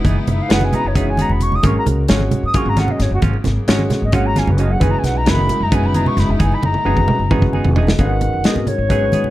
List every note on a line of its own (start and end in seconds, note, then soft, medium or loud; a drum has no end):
0.00 1.61 G#3 medium
0.00 1.61 B3 medium
0.00 1.61 D#4 medium
0.00 1.61 E4 medium
0.04 0.15 F#1 loud
0.04 0.18 E3 medium
0.04 0.18 B3 medium
0.04 0.19 D#4 medium
0.04 0.19 G#4 loud
0.04 kick medium
0.04 closed hi-hat medium
0.04 high conga medium
0.04 low conga soft
0.27 0.38 F#1 loud
0.27 0.43 E5 medium
0.27 closed hi-hat medium
0.27 low conga medium
0.42 0.53 F5 medium
0.49 0.72 F#1 medium
0.49 0.64 E3 medium
0.49 0.80 G#3 medium
0.49 0.64 B3 medium
0.49 0.80 C#4 medium
0.49 0.64 D#4 medium
0.49 0.80 F#4 medium
0.49 0.64 G#4 medium
0.49 0.80 B4 medium
0.49 0.66 F#5 loud
0.49 snare loud
0.49 closed hi-hat medium
0.49 low conga soft
0.61 0.76 G#5 medium
0.61 high conga medium
0.73 0.87 B3 soft
0.73 0.87 D#4 soft
0.73 0.87 G#4 soft
0.73 0.89 A#5 loud
0.73 closed hi-hat soft
0.73 low conga medium
0.84 1.27 F#1 medium
0.84 0.99 C#5 medium
0.84 low conga soft
0.95 1.09 E3 medium
0.95 1.56 G#3 medium
0.95 1.09 B3 medium
0.95 1.56 C#4 medium
0.95 1.09 D#4 medium
0.95 1.56 F#4 medium
0.95 1.09 G#4 medium
0.95 1.56 C#5 medium
0.95 1.11 E5 medium
0.95 kick medium
0.95 closed hi-hat medium
1.09 1.23 G#5 medium
1.17 1.33 B3 soft
1.17 1.33 D#4 soft
1.17 1.32 G#4 soft
1.17 closed hi-hat medium
1.17 high conga medium
1.22 1.33 A#5 medium
1.29 1.62 E1 medium
1.29 1.44 B5 medium
1.29 high conga medium
1.40 1.57 C#6 medium
1.40 closed hi-hat medium
1.40 low conga medium
1.52 1.68 D#6 medium
1.52 low conga medium
1.63 1.74 G#1 loud
1.63 4.79 C#3 medium
1.63 1.77 F#3 medium
1.63 4.79 F#3 medium
1.63 2.00 G#3 medium
1.63 1.78 A#3 medium
1.63 4.79 A#3 medium
1.63 2.00 C#4 medium
1.63 1.78 C#4 medium
1.63 1.78 F4 medium
1.63 2.00 F#4 medium
1.63 2.00 A#4 medium
1.63 1.76 C#6 medium
1.63 kick loud
1.63 closed hi-hat medium
1.63 high conga medium
1.78 1.84 A#5 medium
1.86 2.08 C#2 medium
1.86 closed hi-hat medium
1.86 low conga medium
2.08 2.31 G#1 medium
2.08 2.23 F#3 medium
2.08 2.39 G#3 medium
2.08 2.23 A#3 medium
2.08 2.39 C#4 medium
2.08 2.23 C#4 medium
2.08 2.23 F4 medium
2.08 2.40 F#4 medium
2.08 2.39 C#5 medium
2.08 snare loud
2.08 closed hi-hat loud
2.20 high conga medium
2.31 closed hi-hat medium
2.31 low conga medium
2.43 2.65 G#2 medium
2.43 2.59 D#6 medium
2.54 2.68 F#3 medium
2.54 3.16 G#3 medium
2.54 2.68 A#3 medium
2.54 3.16 C#4 medium
2.54 2.69 C#4 medium
2.54 2.69 F4 loud
2.54 3.16 F#4 medium
2.54 3.16 G#4 medium
2.54 2.71 C#6 medium
2.54 kick loud
2.54 closed hi-hat medium
2.65 2.87 G#1 medium
2.65 2.81 A#5 loud
2.77 2.91 A#3 soft
2.77 2.91 C#4 soft
2.77 2.91 F4 medium
2.77 2.93 F#5 medium
2.77 snare soft
2.77 closed hi-hat medium
2.77 high conga medium
2.88 3.04 D#5 medium
2.88 low conga medium
2.99 3.10 G#1 loud
2.99 3.12 C#5 medium
2.99 snare soft
2.99 closed hi-hat medium
3.11 3.22 F#1 medium
3.11 3.20 F#4 medium
3.22 3.33 G#1 medium
3.22 3.36 F#3 medium
3.22 3.36 A#3 medium
3.22 3.36 C#4 medium
3.22 3.37 F4 medium
3.22 kick loud
3.22 closed hi-hat medium
3.22 high conga medium
3.33 low conga soft
3.44 3.56 G#1 loud
3.44 snare soft
3.44 closed hi-hat medium
3.44 low conga medium
3.68 3.90 G#1 medium
3.68 3.82 F#3 medium
3.68 3.98 G#3 medium
3.68 3.82 A#3 medium
3.68 3.98 C#4 medium
3.68 3.82 C#4 medium
3.68 3.82 F4 medium
3.68 3.99 F#4 medium
3.68 3.99 C#5 medium
3.68 snare loud
3.68 closed hi-hat medium
3.79 high conga medium
3.90 snare soft
3.90 closed hi-hat medium
3.90 low conga medium
4.02 4.45 G#1 medium
4.02 4.15 D#5 medium
4.12 4.27 F#3 medium
4.12 4.74 G#3 medium
4.12 4.27 A#3 medium
4.12 4.74 C#4 medium
4.12 4.27 C#4 medium
4.12 4.27 F4 medium
4.12 4.74 F#4 medium
4.12 4.74 C#5 medium
4.12 4.28 F#5 medium
4.12 kick loud
4.12 closed hi-hat medium
4.26 4.40 A#5 loud
4.36 4.50 A#3 soft
4.36 4.50 C#4 soft
4.36 4.50 F4 medium
4.36 4.51 G#5 medium
4.36 snare soft
4.36 closed hi-hat medium
4.36 high conga medium
4.47 4.80 F#1 medium
4.47 4.61 B4 soft
4.47 low conga medium
4.58 4.72 F#3 medium
4.58 4.73 A#3 medium
4.58 4.73 C#4 medium
4.58 4.73 F4 soft
4.58 4.73 D#5 medium
4.58 closed hi-hat medium
4.71 4.84 F#5 medium
4.80 4.92 F#1 medium
4.80 7.97 B2 medium
4.80 4.95 E3 medium
4.80 5.17 G#3 medium
4.80 7.96 G#3 medium
4.80 4.95 B3 medium
4.80 5.17 C#4 medium
4.80 4.95 D#4 medium
4.80 7.97 D#4 medium
4.80 7.97 E4 medium
4.80 5.17 F#4 medium
4.80 4.95 G#4 medium
4.80 5.17 B4 medium
4.80 4.92 G#5 medium
4.80 kick loud
4.80 closed hi-hat medium
4.80 high conga medium
4.91 5.00 A#5 loud
4.99 5.06 G#5 medium
5.04 5.25 B1 medium
5.04 5.19 F#5 medium
5.04 snare soft
5.04 closed hi-hat medium
5.04 low conga medium
5.17 5.31 A#5 medium
5.25 5.48 F#1 medium
5.25 5.41 E3 medium
5.25 5.57 G#3 medium
5.25 5.57 A#3 medium
5.25 5.41 B3 medium
5.25 5.57 C#4 medium
5.25 5.41 D#4 medium
5.25 5.57 F#4 medium
5.25 5.41 G#4 medium
5.25 5.65 B5 loud
5.25 snare loud
5.25 closed hi-hat medium
5.37 high conga medium
5.49 closed hi-hat medium
5.49 low conga medium
5.60 5.82 F#2 medium
5.60 5.76 A#5 medium
5.71 5.86 E3 medium
5.71 6.33 G#3 medium
5.71 5.86 B3 medium
5.71 6.33 C#4 medium
5.71 5.86 D#4 medium
5.71 6.33 F#4 medium
5.71 5.86 G#4 medium
5.71 6.33 B4 medium
5.71 5.87 G#5 medium
5.71 kick loud
5.71 closed hi-hat medium
5.83 6.05 F#1 medium
5.83 5.97 B5 loud
5.94 6.09 B3 soft
5.94 6.09 D#4 medium
5.94 6.09 G#4 medium
5.94 6.09 A#5 medium
5.94 closed hi-hat medium
5.94 high conga medium
6.06 6.21 C#6 medium
6.06 low conga medium
6.17 6.28 F#1 loud
6.17 6.32 B5 medium
6.17 snare soft
6.17 closed hi-hat medium
6.29 6.39 E1 medium
6.29 6.42 E5 medium
6.39 6.51 F#1 medium
6.39 6.54 E3 medium
6.39 6.54 B3 medium
6.39 6.54 D#4 medium
6.39 6.54 G#4 medium
6.39 6.56 G#5 loud
6.39 kick medium
6.39 closed hi-hat medium
6.39 high conga medium
6.52 6.67 B5 loud
6.52 low conga soft
6.62 6.74 F#1 loud
6.62 7.55 A#5 medium
6.62 high tom medium
6.62 low conga medium
6.74 high tom medium
6.85 7.07 F#1 medium
6.85 6.99 E3 medium
6.85 7.16 G#3 medium
6.85 7.00 B3 medium
6.85 7.16 C#4 medium
6.85 7.00 D#4 medium
6.85 7.16 F#4 medium
6.85 7.00 G#4 medium
6.85 7.16 B4 medium
6.85 low conga soft
6.97 kick medium
6.97 high conga medium
7.08 mid tom medium
7.08 low conga medium
7.19 7.63 F#1 medium
7.19 low conga soft
7.31 7.45 E3 medium
7.31 7.92 G#3 medium
7.31 7.45 B3 loud
7.31 7.92 C#4 medium
7.31 7.45 D#4 loud
7.31 7.92 F#4 medium
7.31 7.45 G#4 loud
7.31 7.92 B4 medium
7.31 kick loud
7.31 mid tom medium
7.42 kick medium
7.42 high conga medium
7.53 7.69 B3 soft
7.53 7.68 D#4 medium
7.53 7.68 G#4 medium
7.53 7.75 G#5 medium
7.53 high conga medium
7.64 7.97 E1 medium
7.64 floor tom medium
7.64 high conga medium
7.76 7.91 E3 medium
7.76 7.91 B3 medium
7.76 7.91 D#4 medium
7.76 7.91 G#4 medium
7.76 7.98 D#5 medium
7.76 floor tom medium
7.76 low conga medium
7.87 snare loud
7.87 low conga medium
7.99 8.31 G#1 medium
7.99 8.48 D#3 medium
7.99 8.13 F#3 medium
7.99 8.36 G#3 medium
7.99 8.13 B3 medium
7.99 8.36 C#4 medium
7.99 8.14 D#4 medium
7.99 8.36 F#4 medium
7.99 8.14 G#4 medium
7.99 8.36 B4 medium
7.99 8.47 F#5 medium
7.99 kick medium
7.99 closed hi-hat medium
7.99 high conga medium
7.99 low conga soft
8.10 low conga soft
8.21 closed hi-hat medium
8.21 low conga medium
8.33 8.44 F#1 medium
8.33 low conga soft
8.44 8.70 B2 medium
8.44 8.59 F#3 medium
8.44 8.75 G#3 medium
8.44 8.59 B3 medium
8.44 8.75 C#4 medium
8.44 8.59 D#4 medium
8.44 8.75 F#4 medium
8.44 8.59 G#4 medium
8.44 8.75 A#4 medium
8.44 8.69 D#5 medium
8.44 snare loud
8.44 closed hi-hat medium
8.56 8.78 G#1 medium
8.56 high conga medium
8.67 9.30 G#2 medium
8.67 9.30 C#5 medium
8.67 closed hi-hat medium
8.67 low conga medium
8.78 9.11 G#1 medium
8.89 9.04 F#3 medium
8.89 9.30 G#3 medium
8.89 9.05 B3 medium
8.89 9.30 C#4 medium
8.89 9.05 D#4 medium
8.89 9.30 F#4 medium
8.89 9.05 G#4 medium
8.89 9.30 B4 medium
8.89 kick medium
8.89 closed hi-hat medium
9.01 low conga soft
9.12 9.24 G#2 medium
9.12 9.28 B3 soft
9.12 9.27 D#4 soft
9.12 9.27 G#4 soft
9.12 closed hi-hat medium
9.12 high conga medium
9.24 muted upright bass stroke soft
9.24 low conga medium